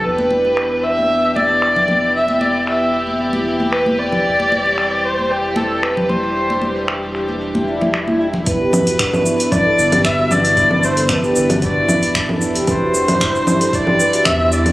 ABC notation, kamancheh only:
X:1
M:4/4
L:1/8
Q:"Swing 16ths" 1/4=114
K:Em
V:1 name="Kamancheh"
B3 e2 d3 | e d e2 z2 B d- | d3 c G A B c- | c2 z6 |
B4 d2 e d- | d c B2 d3 z | c4 d2 e d |]